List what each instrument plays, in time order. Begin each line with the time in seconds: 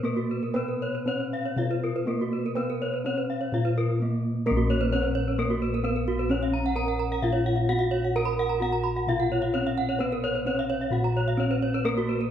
Already playing: kettle gongs B2
0.03 bronze metallophone A#3 A#4, kettle gongs B3
0.17 bronze metallophone F#4
0.31 bronze metallophone B4
0.43 bronze metallophone A#4
0.54 bronze metallophone B3 B4, kettle gongs B4
0.68 bronze metallophone A#4
0.82 bronze metallophone C#5
0.95 bronze metallophone B4
1.06 kettle gongs B3, bronze metallophone C#4 C#5
1.20 bronze metallophone B4
1.33 bronze metallophone F5
1.46 bronze metallophone C#5
1.56 kettle gongs B2, bronze metallophone F4 F5
1.71 bronze metallophone B4
1.84 bronze metallophone A#4
1.96 bronze metallophone B4
2.06 bronze metallophone A#3 A#4, kettle gongs B3
2.21 bronze metallophone F#4
2.33 bronze metallophone B4
2.46 bronze metallophone A#4
2.55 bronze metallophone B3 B4, kettle gongs B4
2.70 bronze metallophone A#4
2.82 bronze metallophone C#5
2.94 bronze metallophone B4
3.04 kettle gongs B3, bronze metallophone C#4 C#5
3.18 bronze metallophone B4
3.30 bronze metallophone F5
3.41 bronze metallophone C#5
3.52 kettle gongs A#2, bronze metallophone F4 F5
3.65 bronze metallophone B4
3.78 bronze metallophone A#4
3.99 bronze metallophone A#3, kettle gongs B3
4.46 bronze metallophone A#3 A#4, kettle gongs A#4
4.51 kettle gongs A#1
4.57 bronze metallophone F#4
4.70 bronze metallophone C#5
4.81 bronze metallophone B4
4.92 kettle gongs B3, bronze metallophone C#4 C#5
5.03 bronze metallophone B4
5.15 bronze metallophone C#5
5.28 bronze metallophone B4
5.39 bronze metallophone A#3 A#4
5.50 bronze metallophone F#4
5.62 bronze metallophone B4
5.74 bronze metallophone A#4
5.84 bronze metallophone B3 B4, kettle gongs B3
5.96 bronze metallophone A#4
6.08 bronze metallophone F#4
6.19 bronze metallophone B4
6.29 bronze metallophone C#4 C#5, kettle gongs C#4
6.43 bronze metallophone F5
6.54 bronze metallophone A#5
6.66 bronze metallophone F#5
6.76 kettle gongs B3, bronze metallophone A#4 A#5
6.88 bronze metallophone F#5
6.99 bronze metallophone A#5
7.12 bronze metallophone F#5
7.22 kettle gongs A#2, bronze metallophone F4 F5
7.33 bronze metallophone C#5
7.46 bronze metallophone F#5
7.56 bronze metallophone F5
7.69 kettle gongs B3, bronze metallophone F#4 F#5
7.79 bronze metallophone F5
7.91 bronze metallophone C#5
8.05 bronze metallophone F#5
8.16 kettle gongs A#4, bronze metallophone A#4 A#5
8.25 bronze metallophone B5
8.39 bronze metallophone F#5
8.49 bronze metallophone A#5
8.60 kettle gongs B3, bronze metallophone F#4 F#5
8.72 bronze metallophone A#5
8.84 bronze metallophone B5
8.97 bronze metallophone F#5
9.07 kettle gongs B2, bronze metallophone F4 F5
9.20 bronze metallophone F#5
9.32 bronze metallophone C#5
9.42 bronze metallophone F5
9.54 kettle gongs B3, bronze metallophone C#4 C#5
9.67 bronze metallophone F5
9.78 bronze metallophone F#5
9.89 bronze metallophone C#5
9.99 bronze metallophone B3 B4, kettle gongs B4
10.12 bronze metallophone A#4
10.24 bronze metallophone C#5
10.35 bronze metallophone B4
10.45 kettle gongs B3, bronze metallophone C#4 C#5
10.59 bronze metallophone F5
10.70 bronze metallophone C#5
10.81 bronze metallophone F5
10.91 kettle gongs A#2, bronze metallophone F#4 F#5
11.04 bronze metallophone A#5
11.17 bronze metallophone C#5
11.28 bronze metallophone F5
11.37 kettle gongs B3, bronze metallophone C#4 C#5
11.51 bronze metallophone B4
11.62 bronze metallophone C#5
11.74 bronze metallophone B4
11.84 bronze metallophone A#3 A#4, kettle gongs A#4
11.98 bronze metallophone F#4
12.09 bronze metallophone B4
12.21 bronze metallophone A#4